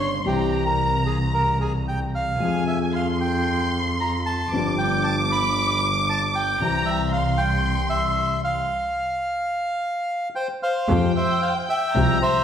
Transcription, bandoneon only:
0.00 0.11 C#5 medium
0.27 0.64 G4 medium
0.66 1.03 A#4 medium
1.06 1.18 G#4 medium
1.34 1.58 A#4 medium
1.61 1.73 G#4 medium
1.88 2.00 G5 medium
2.15 2.64 F5 medium
2.68 2.80 E5 medium
2.95 3.07 F5 medium
3.21 3.70 G5 medium
4.00 4.12 A#5 medium
4.26 4.75 A5 medium
4.78 5.05 G5 medium
5.04 5.16 A5 medium
5.32 5.80 B5 medium
6.10 6.21 A5 medium
6.35 6.90 G5 medium
6.86 7.11 E5 medium
7.12 7.41 F5 medium
7.38 7.88 G5 medium
7.90 8.41 E5 medium
8.44 10.29 F5 medium
10.35 10.48 C5 soft
10.35 10.47 G5 medium
10.63 11.12 C5 medium
10.63 11.12 F5 medium
11.16 11.40 C5 medium
11.16 11.40 E5 medium
11.42 11.54 C5 medium
11.42 11.54 F5 medium
11.69 12.18 E5 medium
11.69 12.18 G5 medium
12.22 12.44 C5 medium
12.22 12.44 E5 medium

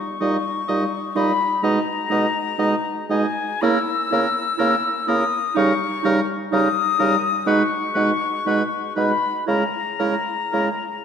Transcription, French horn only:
0.21 0.37 G3 medium
0.69 0.85 G3 medium
1.16 1.32 G3 medium
1.62 1.78 G#3 medium
2.10 2.26 G#3 medium
2.59 2.75 G#3 medium
3.09 3.25 G#3 medium
3.62 3.78 A#3 medium
4.12 4.28 A#3 medium
4.60 4.76 A#3 medium
5.08 5.24 A#3 medium
5.56 5.72 G3 medium
6.05 6.21 G3 medium
6.53 6.69 G3 medium
7.00 7.16 G3 medium
7.47 7.63 G#3 medium
7.95 8.11 G#3 medium
8.46 8.62 G#3 medium
8.97 9.13 G#3 medium
9.48 9.64 G#3 medium
10.00 10.16 G#3 medium
10.54 10.70 G#3 medium

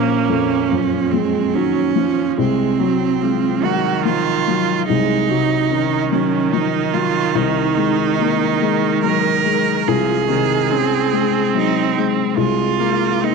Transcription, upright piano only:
0.00 2.35 A#1 medium
0.00 0.12 F3 soft
0.29 0.96 F2 soft
0.71 1.13 F#2 soft
1.13 1.80 F3 soft
1.55 1.96 D#3 soft
1.96 2.38 F3 soft
2.38 4.84 C2 medium
2.80 3.46 F#3 soft
3.22 3.63 G#3 soft
3.63 4.29 F#3 soft
4.05 4.47 F3 soft
4.48 5.13 F#3 soft
4.89 7.32 C2 medium
5.30 5.95 C3 soft
5.71 6.12 C#4 soft
6.12 6.78 F#3 soft
6.53 6.94 F3 soft
6.94 7.35 F#3 soft
7.35 9.83 C2 medium
7.77 8.43 G#3 soft
8.19 8.61 A#3 soft
8.61 9.29 G#3 soft
9.03 9.45 F#3 soft
9.45 10.12 G#3 soft
9.88 12.33 C2 medium
10.30 10.96 C3 soft
10.72 11.13 C#4 soft
11.12 11.79 G#3 soft
11.55 11.96 F#3 soft
11.98 12.38 G#3 soft
12.37 13.35 C2 medium
12.79 13.35 G#3 soft
13.22 13.35 A#3 soft

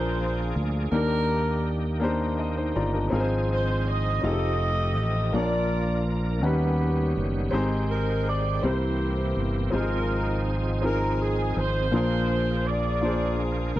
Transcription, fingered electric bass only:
0.00 0.52 A#1 medium
0.56 0.90 D2 medium
0.92 2.72 D#2 medium
2.76 3.10 G1 medium
3.12 4.19 G#1 medium
4.24 4.97 F1 medium
4.97 5.31 A1 medium
5.34 6.44 A#1 loud
6.44 7.13 D#2 loud
7.17 7.51 F#1 medium
7.53 8.59 G#1 medium
8.63 9.33 C2 medium
9.37 9.70 G1 medium
9.73 11.52 G#1 medium
11.57 11.90 G#1 medium
11.93 13.72 A#1 medium
13.76 13.80 D2 medium

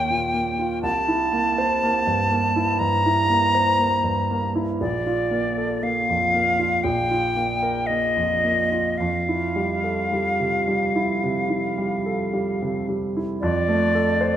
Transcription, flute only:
0.00 0.82 G5 medium
0.83 2.80 A5 medium
2.79 4.52 A#5 medium
4.80 5.85 D5 medium
5.83 6.85 F5 medium
6.83 7.88 G5 medium
7.87 8.99 D#5 medium
8.98 12.88 F5 medium
13.41 14.37 D5 medium

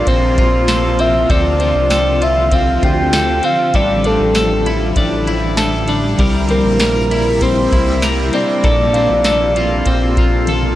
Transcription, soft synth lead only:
0.08 1.02 C5 loud
1.00 1.32 E5 loud
1.30 2.25 D5 loud
2.23 2.56 E5 loud
2.55 2.86 F5 loud
2.84 3.47 G5 loud
3.45 3.77 F5 loud
3.76 4.08 D5 loud
4.06 4.67 A4 medium
6.50 7.43 A#4 loud
7.42 8.03 C5 loud
8.34 10.44 D5 loud

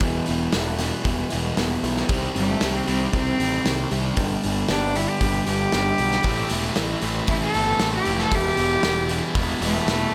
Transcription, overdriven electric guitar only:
0.01 0.27 E2 medium
0.01 0.27 B2 loud
0.01 0.28 E3 medium
0.28 0.51 E2 medium
0.28 0.52 B2 medium
0.28 0.53 E3 medium
0.53 0.78 E2 medium
0.53 0.78 B2 medium
0.53 0.79 E3 medium
0.79 1.04 E2 medium
0.79 1.05 B2 medium
0.79 1.06 E3 loud
1.05 1.31 E2 medium
1.05 1.31 B2 medium
1.05 1.31 E3 loud
1.32 1.57 E2 medium
1.32 1.57 B2 medium
1.32 1.57 E3 loud
1.58 1.82 E2 medium
1.58 1.82 B2 medium
1.58 1.83 E3 medium
1.83 2.08 E2 medium
1.83 2.08 B2 medium
1.83 2.09 E3 medium
2.10 2.34 C3 medium
2.10 2.35 G3 medium
2.10 2.35 C4 loud
2.35 2.61 C3 medium
2.35 2.62 G3 medium
2.35 2.61 C4 medium
2.62 2.86 C3 medium
2.62 2.87 G3 medium
2.62 2.86 C4 medium
2.87 3.12 C3 loud
2.87 3.13 G3 loud
2.87 3.13 C4 loud
3.13 3.38 C3 medium
3.13 3.38 G3 medium
3.13 3.39 C4 medium
3.40 3.64 C3 medium
3.40 3.64 G3 medium
3.40 3.65 C4 medium
3.65 3.90 C3 medium
3.65 3.90 G3 medium
3.65 3.90 C4 loud
3.91 4.16 C3 medium
3.91 4.16 G3 medium
3.91 4.16 C4 medium
4.17 4.43 G2 medium
4.17 4.43 D3 loud
4.17 4.43 G3 loud
4.44 4.68 G2 medium
4.44 4.69 D3 medium
4.44 4.69 G3 medium
4.69 4.95 G2 medium
4.69 4.95 D3 medium
4.69 4.96 G3 medium
4.96 5.21 G2 medium
4.96 5.22 D3 loud
4.96 5.22 G3 loud
5.22 5.46 G2 medium
5.22 5.47 D3 medium
5.22 5.47 G3 loud
5.47 5.72 G2 medium
5.47 5.73 D3 loud
5.47 5.73 G3 medium
5.73 5.99 G2 medium
5.73 5.99 D3 medium
5.73 5.99 G3 medium
6.00 6.24 G2 medium
6.00 6.24 D3 medium
6.00 6.24 G3 medium
6.25 6.49 A2 loud
6.25 6.51 E3 medium
6.25 6.50 A3 loud
6.51 6.75 A2 medium
6.51 6.76 E3 medium
6.51 6.77 A3 medium
6.76 7.02 A2 medium
6.76 7.03 E3 loud
6.76 7.03 A3 medium
7.03 7.28 A2 medium
7.03 7.28 E3 loud
7.03 7.29 A3 loud
7.29 7.53 A2 medium
7.29 7.53 E3 loud
7.29 7.54 A3 loud
7.54 7.78 A2 medium
7.54 7.78 E3 medium
7.54 7.79 A3 medium
7.79 8.04 A2 medium
7.79 8.04 E3 medium
7.79 8.05 A3 medium
8.05 8.30 A2 medium
8.05 8.30 E3 medium
8.05 8.30 A3 medium
8.31 8.56 E2 loud
8.31 8.56 B2 loud
8.31 8.57 E3 loud
8.57 8.81 E2 medium
8.57 8.82 B2 medium
8.57 8.82 E3 medium
8.82 9.07 E2 medium
8.82 9.08 B2 medium
8.82 9.08 E3 loud
9.08 9.33 E2 loud
9.08 9.34 B2 loud
9.08 9.34 E3 loud
9.35 9.60 E2 medium
9.35 9.60 B2 medium
9.35 9.60 E3 loud
9.61 9.86 E2 medium
9.61 9.87 B2 medium
9.61 9.87 E3 loud
9.87 10.13 E2 medium
9.87 10.13 B2 loud
9.87 10.13 E3 loud

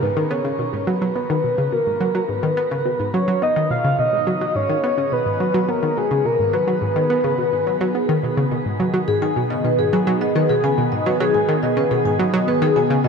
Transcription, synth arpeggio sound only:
0.02 0.10 G#2 medium
0.17 0.24 D#3 loud
0.31 0.35 B3 loud
0.45 0.53 C#3 loud
0.59 0.64 B2 medium
0.73 0.85 G#2 medium
0.87 0.95 F#3 loud
1.02 1.06 F#3 loud
1.16 1.20 B3 medium
1.30 1.38 D#3 loud
1.44 1.49 B2 medium
1.58 1.66 C#3 medium
1.72 1.77 B2 medium
1.86 1.98 G#2 medium
2.01 2.08 F#3 loud
2.15 2.19 F#3 loud
2.29 2.37 G#2 medium
2.43 2.51 D#3 loud
2.57 2.62 B3 loud
2.71 2.79 C#3 loud
2.85 2.90 B2 medium
3.00 3.11 G#2 medium
3.14 3.22 F#3 loud
3.28 3.33 F#3 loud
3.42 3.47 B3 medium
3.56 3.64 D#3 loud
3.70 3.75 B2 medium
3.84 3.92 C#3 loud
3.99 4.03 B2 medium
4.13 4.24 G#2 medium
4.27 4.35 F#3 loud
4.41 4.46 F#3 loud
4.55 4.63 G#2 medium
4.69 4.77 D#3 loud
4.84 4.88 B3 loud
4.98 5.06 C#3 loud
5.12 5.17 B2 medium
5.26 5.38 G#2 medium
5.40 5.48 F#3 loud
5.54 5.59 F#3 loud
5.69 5.73 B3 medium
5.83 5.90 D#3 loud
5.97 6.02 B2 medium
6.11 6.19 C#3 loud
6.25 6.30 B2 medium
6.39 6.51 G#2 medium
6.53 6.61 F#3 loud
6.68 6.72 F#3 loud
6.82 6.89 G#2 medium
6.96 7.04 D#3 loud
7.10 7.15 B3 loud
7.24 7.32 C#3 loud
7.38 7.43 B2 medium
7.52 7.64 G#2 medium
7.67 7.74 F#3 loud
7.81 7.85 F#3 loud
7.95 8.00 B3 medium
8.09 8.17 D#3 loud
8.23 8.28 B2 medium
8.37 8.45 C#3 loud
8.51 8.56 B2 medium
8.66 8.77 G#2 medium
8.80 8.88 F#3 loud
8.94 8.98 F#3 loud
9.08 9.16 G#2 medium
9.22 9.30 D#3 loud
9.36 9.44 B2 medium
9.50 9.58 C#3 loud
9.64 9.69 B2 medium
9.79 9.91 G#2 medium
9.93 10.01 F#3 loud
10.07 10.12 F#3 loud
10.21 10.26 B3 medium
10.35 10.43 D#3 loud
10.50 10.54 B2 medium
10.64 10.72 C#3 loud
10.78 10.83 B2 medium
10.92 11.04 G#2 medium
11.06 11.14 F#3 loud
11.20 11.25 F#3 loud
11.34 11.42 G#2 medium
11.49 11.56 D#3 loud
11.63 11.71 B2 medium
11.77 11.85 C#3 loud
11.91 11.96 B2 medium
12.05 12.17 G#2 medium
12.19 12.27 F#3 loud
12.34 12.38 F#3 loud
12.48 12.52 B3 medium
12.62 12.70 D#3 loud
12.76 12.81 B2 medium
12.90 12.98 C#3 loud
13.04 13.08 B2 medium

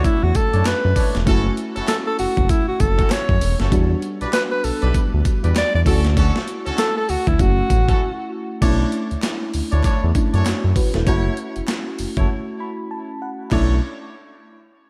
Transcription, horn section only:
0.53 0.70 D4 medium
0.53 0.70 E4 medium
0.53 0.70 A4 medium
0.53 0.70 C#5 medium
0.96 1.17 D4 medium
0.96 1.17 E4 medium
0.96 1.17 A4 medium
0.96 1.18 C#5 medium
1.26 1.48 C#4 loud
1.26 1.48 E4 medium
1.26 1.48 F#4 medium
1.26 1.48 A4 loud
1.75 1.92 C#4 medium
1.75 1.92 E4 medium
1.75 1.92 F#4 medium
1.75 1.92 A4 medium
2.98 3.14 C#4 medium
2.98 3.14 E4 medium
2.98 3.14 F#4 medium
2.98 3.15 A4 medium
3.59 3.75 C#4 medium
3.59 3.75 E4 medium
3.59 3.76 F#4 medium
3.59 3.76 A4 medium
4.21 4.37 D4 medium
4.21 4.37 E4 medium
4.21 4.37 G4 medium
4.21 4.37 B4 medium
4.82 4.98 D4 medium
4.82 4.98 E4 medium
4.82 4.98 G4 medium
4.82 4.98 B4 medium
5.43 5.59 D4 medium
5.43 5.59 E4 medium
5.43 5.59 G4 medium
5.43 5.59 B4 medium
5.86 6.07 C#4 medium
5.86 6.07 D4 medium
5.86 6.07 F#4 medium
5.86 6.07 A4 medium
6.16 6.38 C#4 loud
6.16 6.38 D4 medium
6.16 6.38 F#4 loud
6.16 6.38 A4 loud
6.66 6.82 C#4 medium
6.66 6.82 D4 medium
6.66 6.82 F#4 medium
6.66 6.82 A4 medium
7.88 8.00 C#4 medium
7.88 8.00 E4 medium
7.88 8.01 F#4 medium
7.88 8.01 A4 medium
8.62 8.90 D4 loud
8.62 8.90 E4 medium
8.62 8.91 A4 medium
8.62 8.91 C#5 loud
9.72 9.83 D4 medium
9.72 9.83 E4 medium
9.72 9.83 A4 medium
9.72 9.84 C#5 medium
9.84 10.05 D4 medium
9.84 10.05 E4 medium
9.84 10.05 A4 medium
9.84 10.05 C#5 medium
10.33 10.49 D4 medium
10.33 10.49 E4 medium
10.33 10.49 A4 medium
10.33 10.50 C#5 medium
11.06 11.35 E4 loud
11.06 11.35 F#4 medium
11.06 11.35 A4 loud
11.06 11.35 C#5 loud
12.17 12.29 E4 medium
12.17 12.29 F#4 medium
12.17 12.29 A4 medium
12.17 12.29 C#5 medium
13.51 13.75 D4 loud
13.51 13.75 E4 medium
13.51 13.76 A4 medium
13.51 13.76 C#5 loud

